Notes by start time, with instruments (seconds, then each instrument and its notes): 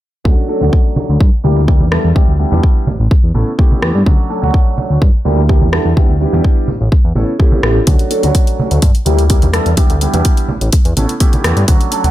0.24 analog synth bass D2, grand piano F#3 A3 C#4 D4 F#4, kick, tambourine, high conga
0.38 tambourine
0.48 grand piano F#3 A3 C#4 D4 A4, tambourine
0.61 analog synth bass D2, grand piano F#3 A3 C#4 D4 F#4, tambourine, high conga
0.73 kick, tambourine
0.96 tambourine, high conga
1.09 analog synth bass D2, tambourine
1.21 analog synth bass G2, kick
1.44 analog synth bass D2, grand piano G3 A#3 D4 E4 G4, tambourine, high conga
1.57 tambourine
1.68 grand piano G3 A#3 D4 E4 G4, kick
1.80 analog synth bass E2, tambourine, high conga
1.92 grand piano G3 B3 D4 E4 A4, cross-stick, tambourine
2.04 analog synth bass E2, tambourine
2.15 analog synth bass D2, grand piano G3 B3 D4 E4 G4, kick, tambourine, high conga
2.28 analog synth bass D2, tambourine
2.39 grand piano G3 B3 D4 E4 G4, tambourine
2.52 analog synth bass E2, grand piano G3 B3 D4 E4 G4, tambourine, high conga
2.63 kick
2.87 analog synth bass A1, tambourine, high conga
3.00 analog synth bass A1, tambourine
3.11 kick
3.24 analog synth bass E2
3.34 analog synth bass A1, grand piano A3 B3 C#4 E4 A4, tambourine, high conga
3.47 tambourine
3.58 grand piano A3 B3 C#4 E4 G4, kick
3.71 tambourine, high conga
3.82 analog synth bass E2, grand piano A3 B3 C#4 E4 G4, cross-stick, tambourine
3.95 analog synth bass G2
4.06 analog synth bass D2, grand piano F#3 A3 C#4 D4 F#4, kick, tambourine, high conga
4.20 tambourine
4.29 grand piano F#3 A3 C#4 D4 A4, tambourine
4.42 analog synth bass D2, grand piano F#3 A3 C#4 D4 F#4, tambourine, high conga
4.54 kick
4.67 tambourine
4.77 tambourine, high conga
4.90 analog synth bass D2, tambourine
5.02 analog synth bass G2, kick
5.14 tambourine
5.25 analog synth bass D2, grand piano G3 A#3 D4 E4 G4, tambourine, high conga
5.38 tambourine
5.49 grand piano G3 A#3 D4 E4 G4, kick
5.62 analog synth bass E2, tambourine, high conga
5.72 grand piano G3 B3 D4 E4 A4, cross-stick, tambourine
5.86 analog synth bass E2, tambourine
5.96 analog synth bass D2, grand piano G3 B3 D4 E4 G4, kick, tambourine, high conga
6.09 analog synth bass D2, tambourine
6.20 grand piano G3 B3 D4 E4 G4, tambourine
6.33 analog synth bass E2, grand piano G3 B3 D4 E4 G4, tambourine, high conga
6.45 kick
6.57 tambourine
6.68 analog synth bass A1, tambourine, high conga
6.81 analog synth bass A1, tambourine
6.92 kick
7.04 analog synth bass E2, tambourine
7.15 analog synth bass A1, grand piano A3 B3 C#4 E4 A4, tambourine, high conga
7.29 tambourine
7.39 grand piano A3 B3 C#4 E4 G4, kick
7.52 tambourine, high conga
7.63 analog synth bass A1, grand piano A3 B3 C#4 E4 G4, cross-stick
7.86 analog synth bass D2, grand piano F#3 A3 C#4 D4 F#4, kick, closed hi-hat, tambourine, high conga
7.99 closed hi-hat, tambourine
8.10 grand piano F#3 A3 C#4 D4 A4, closed hi-hat, tambourine
8.22 analog synth bass D2, grand piano F#3 A3 C#4 D4 F#4, closed hi-hat, tambourine, high conga
8.35 kick, closed hi-hat
8.47 closed hi-hat
8.59 tambourine, high conga
8.71 analog synth bass D2, closed hi-hat, tambourine
8.82 analog synth bass G2, kick, closed hi-hat
8.95 closed hi-hat, tambourine
9.06 analog synth bass D2, grand piano G3 A#3 D4 E4 G4, closed hi-hat, tambourine, high conga
9.19 closed hi-hat, tambourine
9.29 grand piano G3 A#3 D4 E4 G4, kick, closed hi-hat
9.42 analog synth bass E2, closed hi-hat, tambourine, high conga
9.53 grand piano G3 B3 D4 E4 A4, cross-stick, closed hi-hat, tambourine
9.66 analog synth bass E2, closed hi-hat, tambourine
9.77 analog synth bass D2, grand piano G3 B3 D4 E4 G4, kick, closed hi-hat, tambourine, high conga
9.90 analog synth bass D2, closed hi-hat, tambourine
10.01 grand piano G3 B3 D4 E4 G4, closed hi-hat, tambourine
10.14 analog synth bass E2, grand piano G3 B3 D4 E4 G4, closed hi-hat, tambourine, high conga
10.25 kick, closed hi-hat
10.37 closed hi-hat, tambourine
10.49 analog synth bass A1, tambourine, high conga
10.61 analog synth bass A1, closed hi-hat, tambourine
10.72 kick, closed hi-hat
10.85 analog synth bass E2, closed hi-hat
10.97 analog synth bass A1, grand piano A3 B3 C#4 E4 A4, closed hi-hat, tambourine, high conga
11.09 closed hi-hat, tambourine
11.20 grand piano A3 B3 C#4 E4 G4, kick, closed hi-hat
11.33 closed hi-hat, tambourine, high conga
11.44 analog synth bass E2, grand piano A3 B3 C#4 E4 G4, cross-stick, closed hi-hat, tambourine
11.57 analog synth bass G2, closed hi-hat
11.67 analog synth bass D2, grand piano F#3 A3 C#4 D4 F#4, kick, closed hi-hat, tambourine, high conga
11.81 closed hi-hat, tambourine
11.91 grand piano F#3 A3 C#4 D4 A4, closed hi-hat, tambourine
12.03 analog synth bass D2, grand piano F#3 A3 C#4 D4 F#4, closed hi-hat, tambourine, high conga